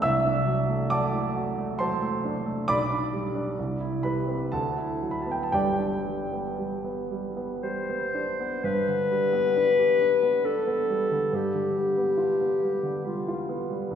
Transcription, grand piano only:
0.02 C2 E5 E6
0.25 D4
0.46 F#3
0.69 A3
0.90 F#4 D5 A5 D6
1.14 A3
1.36 F#4
1.58 A3
1.79 F#3 C5 A5 C6
2.03 A3
2.24 D4
2.46 A3
2.68 B1 D5 B5 D6
2.90 D4
3.13 G3
3.35 D4
3.59 C2
3.80 E4
4.03 G3 B4 B5
4.27 C4
4.52 D2 A4 F#5 A5
4.77 E4
5.02 F#3
5.11 B5
5.22 A5
5.26 B3
5.31 G5
5.43 A5
5.52 G1 G2 G4 D5 G5
5.80 D4
6.06 G3
6.32 B3
6.58 G3
6.84 B3
7.11 G3
7.37 B3
7.63 G3
7.90 B3
8.15 D4
8.41 B3
8.64 G2
8.88 D3
9.12 G3
9.33 B3
9.57 D4
9.79 G4
10.01 D4
10.23 B3
10.45 D4
10.67 B3
10.90 G3
11.11 D3
11.33 G2
11.54 D3
11.76 G3
11.97 B3
12.17 F4
12.40 B3
12.62 G3
12.83 D3
13.06 G3
13.28 F4
13.49 B3
13.69 G3
13.91 C2

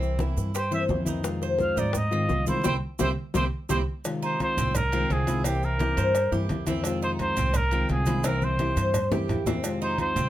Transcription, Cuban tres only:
Already playing: C4
0.20 E4
0.55 G4
0.72 C5
1.07 D#4
1.43 C5
1.77 D#4
2.13 F4
2.48 E4
2.64 C4 E4 G4
3.00 C4 E4 G4
3.35 C4 E4 G4
3.70 C4 E4 G4
4.23 D#4
4.58 C4
4.75 D#4
4.93 C4
5.28 E4
5.45 C4
5.80 G4
5.98 C5
6.32 G4
6.68 C4
7.02 D#4
7.37 C4
7.54 D#4
7.73 C4
8.07 E4
8.25 C4
8.60 G4
8.77 C5
9.12 G4
9.47 C4
9.82 D#4
10.16 C4

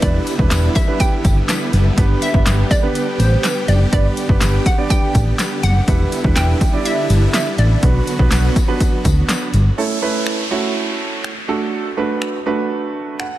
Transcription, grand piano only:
0.02 D4 E4 G4 B4
0.39 D4 E4 G4 B4
0.88 D4 E4 G4 B4
1.97 B3 D4 G4 B4
2.34 B3 D4 G4 B4
2.83 B3 D4 G4 B4
3.92 B3 D4 G4 B4
4.29 B3 D4 G4 B4
4.78 B3 D4 G4 D5
5.88 D4 E4 G4 B4
6.24 D4 E4 G4 B4
6.73 D4 E4 G4 D5
7.83 B3 D4 F#4 B4
8.19 B3 D4 F#4 B4
8.68 B3 D4 F#4 B4
9.78 A3 C#4 E4 A4
10.02 A3 C#4 E4 B4
10.51 A3 C#4 E4 F#4
11.48 A3 D4 F#4 A4
11.97 A3 D4 F#4 B4
12.46 A3 D4 F#4 B4
13.19 F#5

